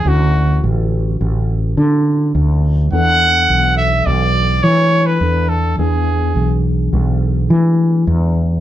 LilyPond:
<<
  \new Staff \with { instrumentName = "Trumpet" } { \time 5/4 \key e \mixolydian \tempo 4 = 105 fis'4 r1 | fis''4. e''8 d''4 cis''8. b'8. a'8 | gis'4. r2. r8 | }
  \new Staff \with { instrumentName = "Tine electric piano" } { \time 5/4 \key e \mixolydian <d cis' e' fis'>1~ <d cis' e' fis'>4 | <e b d' a'>1 <e b d' a'>4 | <e b d' gis'>1~ <e b d' gis'>4 | }
  \new Staff \with { instrumentName = "Fretless electric bass" } { \clef bass \time 5/4 \key e \mixolydian d,4 a,,4 a,,4 d4 d,4 | e,4 b,,4 b,,4 e4 e,4 | e,4 b,,4 b,,4 e4 e,4 | }
>>